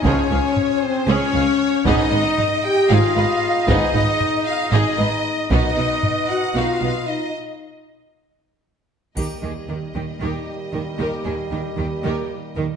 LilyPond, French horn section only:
\new Staff \with { instrumentName = "French horn section" } { \time 7/8 \key ees \major \tempo 4 = 115 des'4. c'8 des'4. | ees'4. g'8 f'4. | ees'4. f'8 ees'4. | dis'4. fis'8 f'4 dis'8 |
r2. r8 | <bes g'>2.~ <bes g'>8~ | <bes g'>2.~ <bes g'>8 | }